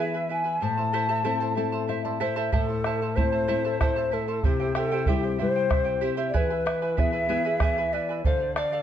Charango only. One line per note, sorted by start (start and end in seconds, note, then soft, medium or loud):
0.00 0.14 E4 medium
0.00 0.14 G#4 medium
0.00 0.13 B4 medium
0.00 0.14 E5 medium
0.00 0.13 G#5 medium
0.14 0.29 E4 soft
0.14 0.29 B4 soft
0.14 0.30 G#5 soft
0.29 0.44 E4 soft
0.29 0.44 B4 soft
0.29 0.46 E5 soft
0.29 0.43 G#5 medium
0.44 0.60 E4 soft
0.44 0.62 B4 soft
0.44 0.61 G#5 soft
0.61 0.77 E4 soft
0.61 0.77 C5 medium
0.61 0.77 E5 soft
0.61 0.76 A5 medium
0.77 0.92 E4 soft
0.77 0.93 C5 soft
0.77 0.93 A5 soft
0.93 1.08 E4 medium
0.93 1.08 A4 medium
0.93 1.08 C5 medium
0.93 1.09 E5 medium
0.93 1.07 A5 medium
1.09 1.23 E4 soft
1.09 1.23 A4 soft
1.09 1.24 C5 medium
1.09 1.23 E5 medium
1.09 1.24 A5 medium
1.24 1.41 E4 medium
1.24 1.41 A4 medium
1.24 1.41 C5 medium
1.24 1.41 E5 medium
1.24 1.39 A5 medium
1.40 1.55 E4 soft
1.40 1.55 C5 soft
1.40 1.56 A5 medium
1.55 1.72 E4 soft
1.55 1.72 C5 medium
1.55 1.72 E5 soft
1.55 1.71 A5 medium
1.72 1.87 E4 soft
1.72 1.87 C5 soft
1.72 1.88 A5 soft
1.88 2.05 E4 soft
1.88 2.04 C5 medium
1.88 2.04 E5 soft
1.88 2.03 A5 medium
2.05 2.19 E4 soft
2.05 2.20 C5 soft
2.05 2.20 A5 soft
2.20 2.35 E4 medium
2.20 2.36 A4 medium
2.20 2.35 C5 medium
2.20 2.36 E5 medium
2.20 2.35 A5 medium
2.36 2.52 E4 medium
2.36 2.51 A4 medium
2.36 2.52 C5 medium
2.36 2.51 E5 medium
2.36 2.52 A5 medium
2.52 2.69 E4 medium
2.52 2.69 A4 medium
2.52 2.68 C5 medium
2.52 2.69 E5 medium
2.52 2.67 A5 medium
2.69 2.84 E4 soft
2.69 2.84 C5 soft
2.69 2.85 A5 soft
2.85 3.01 E4 medium
2.85 3.01 C5 medium
2.85 3.01 E5 medium
2.85 3.01 A5 medium
3.02 3.15 E4 soft
3.02 3.15 C5 soft
3.02 3.16 A5 soft
3.16 3.32 E4 medium
3.16 3.31 C5 medium
3.16 3.32 E5 medium
3.16 3.31 A5 medium
3.32 3.47 E4 soft
3.32 3.47 C5 soft
3.32 3.48 A5 soft
3.48 3.64 E4 medium
3.48 3.64 A4 medium
3.48 3.64 C5 medium
3.48 3.64 E5 medium
3.48 3.63 A5 medium
3.64 3.80 E4 soft
3.64 3.79 A4 soft
3.64 3.80 C5 medium
3.64 3.80 E5 soft
3.64 3.80 A5 medium
3.80 3.96 E4 medium
3.80 3.96 A4 medium
3.80 3.96 C5 medium
3.80 3.96 E5 medium
3.80 3.95 A5 medium
3.96 4.11 E4 soft
3.96 4.11 C5 soft
3.96 4.12 A5 medium
4.11 4.28 E4 medium
4.11 4.27 C5 medium
4.11 4.28 E5 soft
4.11 4.27 A5 soft
4.28 4.44 E4 soft
4.28 4.44 C5 soft
4.28 4.44 A5 soft
4.44 4.60 E4 soft
4.44 4.59 C5 medium
4.44 4.60 E5 soft
4.44 4.58 G5 medium
4.60 4.75 E4 soft
4.60 4.75 C5 soft
4.60 4.75 G5 soft
4.75 4.91 E4 medium
4.75 4.91 G4 medium
4.75 4.91 C5 medium
4.75 4.91 E5 medium
4.75 4.90 G5 medium
4.91 5.06 E4 medium
4.91 5.06 G4 soft
4.91 5.06 C5 medium
4.91 5.06 E5 medium
4.91 5.07 G5 medium
5.07 5.23 E4 medium
5.07 5.23 G4 medium
5.07 5.22 C5 medium
5.07 5.23 E5 medium
5.07 5.22 G5 medium
5.23 5.38 E4 soft
5.23 5.38 C5 soft
5.23 5.38 G5 medium
5.38 5.55 E4 medium
5.38 5.54 C5 soft
5.38 5.55 E5 soft
5.38 5.54 G5 medium
5.55 5.69 E4 soft
5.55 5.69 C5 soft
5.55 5.70 G5 soft
5.69 5.85 E4 soft
5.69 5.85 C5 medium
5.69 5.86 E5 soft
5.69 5.83 G5 soft
5.85 6.00 E4 soft
5.85 6.01 C5 soft
5.85 6.01 G5 soft
6.01 6.16 E4 medium
6.01 6.17 G4 medium
6.01 6.16 C5 medium
6.01 6.17 E5 medium
6.01 6.16 G5 medium
6.17 6.33 E4 medium
6.17 6.33 G4 medium
6.17 6.33 C5 medium
6.17 6.33 E5 medium
6.17 6.34 G5 medium
6.34 6.50 E4 medium
6.34 6.50 G#4 medium
6.34 6.50 B4 medium
6.34 6.50 E5 medium
6.34 6.49 G#5 medium
6.50 6.65 E4 soft
6.50 6.65 B4 soft
6.50 6.65 G#5 soft
6.65 6.82 E4 medium
6.65 6.81 B4 medium
6.65 6.82 E5 medium
6.65 6.81 G#5 medium
6.82 6.96 E4 soft
6.82 6.97 B4 soft
6.82 6.97 G#5 medium
6.97 7.13 E4 medium
6.97 7.12 B4 medium
6.97 7.13 E5 medium
6.97 7.11 G#5 medium
7.13 7.28 E4 soft
7.13 7.28 B4 soft
7.13 7.28 G#5 soft
7.29 7.44 E4 medium
7.29 7.45 G#4 medium
7.29 7.44 B4 medium
7.29 7.45 E5 medium
7.29 7.43 G#5 medium
7.45 7.60 E4 medium
7.45 7.60 G#4 soft
7.45 7.60 B4 medium
7.45 7.60 E5 soft
7.45 7.60 G#5 medium
7.61 7.77 E4 medium
7.61 7.77 G#4 medium
7.61 7.77 B4 medium
7.61 7.77 E5 medium
7.61 7.77 G#5 medium
7.78 7.92 E4 soft
7.78 7.93 B4 soft
7.78 7.93 G#5 soft
7.93 8.09 E4 soft
7.93 8.09 B4 medium
7.93 8.09 E5 medium
7.93 8.08 G#5 medium
8.09 8.25 E4 soft
8.09 8.25 B4 soft
8.09 8.25 G#5 soft
8.25 8.41 A4 soft
8.25 8.41 D5 medium
8.25 8.39 F5 medium
8.40 8.56 D5 soft
8.40 8.56 F5 soft
8.57 8.73 A4 medium
8.57 8.72 D5 medium
8.57 8.71 F5 medium
8.72 8.82 A4 soft
8.72 8.82 D5 soft
8.72 8.82 F5 medium